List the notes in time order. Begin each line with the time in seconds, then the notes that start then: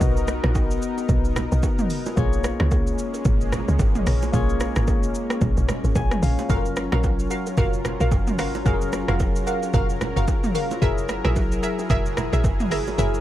Already playing: B3 D#4 F#4 A#4 D#5
0.01 B1, kick, low conga, shaker
0.17 shaker
0.28 cross-stick, low bongo, shaker
0.44 A#1, cross-stick, low bongo
0.55 kick, high bongo, shaker
0.71 shaker
0.82 shaker
0.98 high bongo, shaker
1.09 B1, kick, low conga, shaker
1.25 shaker
1.36 cross-stick, low bongo, low conga, shaker
1.52 B1, shaker
1.63 kick, high bongo, shaker
1.79 mid tom, shaker
1.90 open hi-hat, shaker
2.06 low bongo, shaker
2.16 A#1 G#3 A#3 C#4 F4 G#4 C#5, kick, low conga, shaker
2.33 shaker
2.44 cross-stick, low bongo, shaker
2.60 C#2, cross-stick, low bongo
2.71 kick, high bongo, shaker
2.87 shaker
2.98 shaker
3.14 high bongo, shaker
3.25 G#1, kick, low conga, shaker
3.41 shaker
3.52 cross-stick, low bongo, low conga, shaker
3.68 C#2, shaker
3.79 G#1, kick, high bongo, shaker
3.95 mid tom, shaker
4.07 A#1, cross-stick, open hi-hat, shaker
4.22 low bongo, shaker
4.32 A#1 A#3 F4 G#4 C#5, kick, low conga, shaker
4.49 shaker
4.60 cross-stick, low bongo, shaker
4.76 G#1, cross-stick, low bongo, shaker
4.87 kick, high bongo, shaker
5.03 shaker
5.15 shaker
5.30 cross-stick, high bongo, shaker
5.41 A#1, kick, low conga, shaker
5.57 A#1, shaker
5.69 cross-stick, low bongo, low conga, shaker
5.84 G#1, shaker
5.95 A#1 G#5, kick, high bongo, shaker
6.11 cross-stick, mid tom, shaker
6.23 A#1 F5, open hi-hat, shaker
6.39 low bongo, shaker
6.48 F#1 F#3 C#4 F4 F#4 A4 A#4 F5, kick, low conga, shaker
6.57 A#4
6.65 shaker
6.76 cross-stick, low bongo, shaker
6.92 A#1 F#4 A#4 F5, cross-stick, low bongo
7.03 kick, high bongo, shaker
7.19 shaker
7.30 F#4 A#4 F5, shaker
7.46 high bongo, shaker
7.57 F#1 F#4 A#4 F5, kick, low conga, shaker
7.73 shaker
7.85 cross-stick, low bongo, low conga, shaker
8.00 A#1 F#4 A#4 F5, shaker
8.12 F#1, kick, high bongo, shaker
8.27 mid tom, shaker
8.39 G#1 F#4 A#4 F5, cross-stick, open hi-hat, shaker
8.54 low bongo, shaker
8.65 F#1 F#3 C#4 F4 F#4 G#4 A#4 F5, kick, low conga, shaker
8.74 A#4
8.82 shaker
8.93 cross-stick, low bongo, shaker
9.08 F1 F#4 A#4 F5, cross-stick, low bongo
9.20 kick, high bongo, shaker
9.36 shaker
9.47 F#4 A#4 F5, shaker
9.63 high bongo, shaker
9.74 F#1 F#4 A#4 F5, kick, low conga, shaker
9.90 shaker
10.01 cross-stick, low bongo, low conga, shaker
10.16 F#1 F#4 A#4 F5, shaker
10.28 kick, high bongo, shaker
10.44 mid tom, shaker
10.55 F#4 A#4 F5, open hi-hat, shaker
10.71 low bongo, shaker
10.81 F#1 F#3 E4 G#4 A#4 E5, kick, low conga, shaker
10.98 shaker
11.09 cross-stick, low bongo, shaker
11.24 A#1 G#4 A#4 E5, cross-stick, low bongo
11.36 kick, high bongo, shaker
11.52 shaker
11.63 G#4 A#4 E5, shaker
11.79 high bongo, shaker
11.90 F#1 G#4 A#4 E5, kick, low conga, shaker
12.06 shaker
12.17 cross-stick, low bongo, low conga, shaker
12.33 A#1 G#4 A#4 E5, shaker
12.44 F#1, kick, high bongo, shaker
12.60 mid tom, shaker
12.71 G#1 G#4 A#4 E5, cross-stick, open hi-hat, shaker
12.87 low bongo, shaker
12.97 F#1 F#3 E4 G#4 A#4 E5, low conga, shaker
13.14 shaker